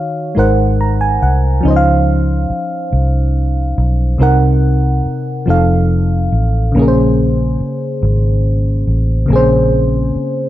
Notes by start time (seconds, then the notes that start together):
Already playing: D#3 D#4 F#4 C#5 F5
0.35 G#1 G#3 D#4 A#4 C5
0.39 F#5
0.81 A#5
1.01 G#5
1.22 C2 F#5
1.61 F3 C#4
1.65 C#2 D#4 C5
1.70 D#5
1.76 F5
2.50 muted fingered electric bass stroke
2.93 C2
3.78 B1
4.18 C2 C3 C4 D#4 A#4
4.23 F#5
5.05 muted fingered electric bass stroke
5.46 F1 F3 C4 D#4 A4
5.50 F5
6.32 A1
6.72 A#1 C#3 A#3
6.77 C#4 G#4
6.82 A#4
6.88 C5
7.60 muted fingered electric bass stroke
8.03 G#1
8.87 A1
9.26 C#3 A#3
9.30 A#1 C4 G#4
9.36 C#4 C5
10.15 muted fingered electric bass stroke